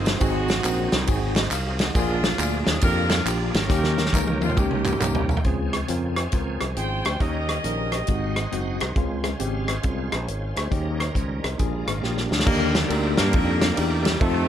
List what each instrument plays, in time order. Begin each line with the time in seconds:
Already playing: fingered electric bass G1, tonewheel organ F3 C4 D#4 G#4, saxophone section G#3 C4 F4, tine electric piano D#4 F4 A#4
0.05 snare, ride, tambourine
0.20 fingered electric bass G#1, tine electric piano G#2 C4 D#4 F#4 G#4, tonewheel organ F#3 C4 D#4 G#4, saxophone section C4 D#4 F#4, kick, ride, tambourine
0.48 snare, ride, tambourine
0.64 fingered electric bass A#1, tine electric piano C4 D#4 F#4 A#4, clap, ride, tambourine
0.92 fingered electric bass C2, snare, ride, tambourine
1.07 fingered electric bass G#1, tine electric piano C4 D#4 F#4 G#4, kick, ride, tambourine
1.36 tonewheel organ C5, tine electric piano C5 D#5, snare, clap, ride, tambourine
1.50 fingered electric bass C2, tonewheel organ F5, tine electric piano F5, clap, ride, tambourine
1.78 tonewheel organ D#5, tine electric piano D#5 F#5, snare, ride, tambourine
1.94 fingered electric bass A#1, tine electric piano A#2 A#3 D4 F4 G#4, tonewheel organ F3 A#3 D4 G4, saxophone section G#3 D4 F4, kick, ride, tambourine
1.99 tonewheel organ G#4
2.24 snare, ride, tambourine
2.38 fingered electric bass D2, tine electric piano A#3 D4 F4 G#4, clap, ride, tambourine
2.67 fingered electric bass D#2, saxophone section G#4, snare, ride, tambourine
2.81 fingered electric bass F2, tine electric piano A#3 D4 F4 G4, saxophone section D4 F4 A#4, kick, ride, tambourine
3.10 snare, clap, ride, tambourine
3.25 fingered electric bass A#1, tine electric piano A#3 D4 F4 G4, clap, ride, tambourine
3.54 fingered electric bass G#1, saxophone section C#4 G4 A#4, snare, ride, tambourine
3.69 fingered electric bass D#2, tonewheel organ D#3 A#3 C#4 F4, tine electric piano D#3 A#3 C#4 D#4 G4, kick, snare, tambourine
3.75 tonewheel organ G4
3.84 snare
3.98 snare, tambourine
4.06 snare
4.13 fingered electric bass C#2, tine electric piano A#3 C#4 D#4 A#4, kick, clap, high tom, tambourine
4.27 high tom
4.41 fingered electric bass D#2, saxophone section F4, high tom, tambourine
4.50 mid tom
4.56 fingered electric bass C#2, tine electric piano A#3 C#4 D#4 G4, saxophone section A#3 C#4 G4, kick, mid tom, tambourine
4.71 mid tom
4.85 clap, mid tom, tambourine
4.93 mid tom
5.01 fingered electric bass C2, tine electric piano A#3 C#4 D#4 A#4, clap, mid tom, tambourine
5.15 floor tom
5.29 floor tom, tambourine
5.37 floor tom
5.44 fingered electric bass C#2, tine electric piano C#3 C4 C#4 F4 G#4, tonewheel organ F3 C4 C#4 G#4, kick, closed hi-hat
5.73 cross-stick, closed hi-hat
5.88 fingered electric bass F2, tine electric piano C4 C#4 F4 A#4, closed hi-hat
6.16 cross-stick, closed hi-hat
6.32 fingered electric bass C#2, tine electric piano C4 C#4 F4 A#4, kick, closed hi-hat
6.61 fingered electric bass C2, cross-stick, closed hi-hat
6.75 fingered electric bass G#1, tine electric piano C4 C#4 F4 G#4, saxophone section C5 G5, closed hi-hat
7.05 fingered electric bass D2, cross-stick, closed hi-hat
7.19 fingered electric bass D#2, tine electric piano D#3 A#3 C#4 D#4 G4, tonewheel organ G3 C#4 D#4 A#4, saxophone section G4 A#4 D#5, kick, closed hi-hat
7.49 cross-stick, closed hi-hat
7.64 fingered electric bass A#1, tine electric piano A#3 C#4 D#4 A#4, closed hi-hat
7.92 cross-stick, closed hi-hat
8.07 fingered electric bass G#1, tine electric piano G#2 G#3 C4 D#4 F#4, tonewheel organ G#3 D#4 B4 F#5, kick, closed hi-hat
8.15 tonewheel organ C5
8.36 cross-stick, closed hi-hat
8.52 fingered electric bass F#1, tine electric piano G#3 C4 D#4 F#4, closed hi-hat
8.80 fingered electric bass C2, cross-stick, closed hi-hat
8.96 fingered electric bass C#2, tine electric piano C#3 G#3 C4 C#4 F4, tonewheel organ G#3 C#4 F4 A#4, kick, closed hi-hat
9.02 tonewheel organ C5
9.24 cross-stick, closed hi-hat
9.39 fingered electric bass G#1, tine electric piano G#3 C4 C#4 G4, closed hi-hat
9.68 cross-stick, closed hi-hat
9.83 fingered electric bass C2, tine electric piano G#3 C4 C#4 F4, kick, closed hi-hat
10.12 fingered electric bass A#1, cross-stick, closed hi-hat
10.28 fingered electric bass G#1, tine electric piano A#4 C#5, closed hi-hat
10.56 fingered electric bass D2, tine electric piano G#4 C5, cross-stick, closed hi-hat
10.70 fingered electric bass D#2, tine electric piano D#3 A#3 C#4 D#4 G4, tonewheel organ G3 C#4 D#4 A#4, kick, closed hi-hat
11.00 tine electric piano A#4 C#5, cross-stick, closed hi-hat
11.15 fingered electric bass C#2, tine electric piano C5, kick, closed hi-hat
11.44 fingered electric bass C2, tine electric piano G4 A#4, cross-stick, closed hi-hat
11.58 fingered electric bass A#1, tine electric piano A#2 A#3 D4 F4 G#4, tonewheel organ G#3 D4 F4 A#4, kick, closed hi-hat
11.87 fingered electric bass G#1, cross-stick, closed hi-hat
12.02 fingered electric bass A#1, tine electric piano A#3 D4 F4 G4, snare
12.17 snare
12.31 fingered electric bass D2, snare
12.39 snare
12.46 fingered electric bass D#2, tine electric piano D3 A#3 D4 D#4 G4 A#4, saxophone section D3 G3 A#3, tonewheel organ F3 A#3 D4 G4 A#4, kick, crash
12.53 tonewheel organ G3
12.73 saxophone section D4, snare, ride
12.89 fingered electric bass D2, tine electric piano A#3 D4 D#4 G4 A#4, saxophone section C4, ride
13.16 fingered electric bass G2, saxophone section D3 G3 A#3, snare, ride
13.33 fingered electric bass F2, tine electric piano A#3 D4 D#4 G4 A4, kick, ride
13.62 snare, ride
13.75 fingered electric bass E2, saxophone section A#2 D3 G3, tine electric piano A#3 D4 D#4 G4 A#4, ride
14.05 snare, ride
14.19 fingered electric bass F2, saxophone section C3 D#3 A3, tonewheel organ F3 A3 C4 D#4 A4, tine electric piano A3 C4 D#4 F4, kick, ride
14.23 tine electric piano A4